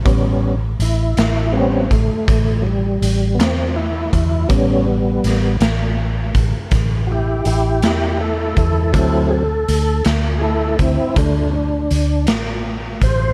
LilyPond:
<<
  \new Staff \with { instrumentName = "Tonewheel organ" } { \time 12/8 \key d \major \tempo 4. = 54 <g b cis'>8 r8 e'4 <g b c' cis'>8 a4 <fis g>4 <b c'>8 e'4 | <g b cis'>4. r2 <e' fis' g'>8 <e' g'>8 <e' g'>8 <e' a'>8 <e' a'>8 | <fis c' e' a'>8 <gis' a'>4 r8 <e' gis' a'>8 <c' e'>8 <a d'>8 <cis' d'>4 r4 c''8 | }
  \new Staff \with { instrumentName = "Fingered electric bass" } { \clef bass \time 12/8 \key d \major a,,4 a,,8 a,,4 a,,16 r16 a,,4 a,,8 e,4 e,8 | a,,4 a,,8 a,,4 a,,16 r16 a,,4 a,,8 e,4 e,8 | d,4 d,8 d,4 d,16 r16 d,4 d,8 a,,4 a,,8 | }
  \new DrumStaff \with { instrumentName = "Drums" } \drummode { \time 12/8 <hh bd>4 hh8 <hh sn>4 <hh bd>8 <hh bd>4 hh8 <hh sn>4 <hh bd>8 | <hh bd>4 <hh sn>8 <hh sn>4 <hh bd>8 <hh bd sn>4 hh8 <hh sn>4 <hh bd>8 | <hh bd>4 hh8 <hh sn>4 <hh bd>8 <hh bd>4 hh8 <hh sn>4 <hh bd>8 | }
>>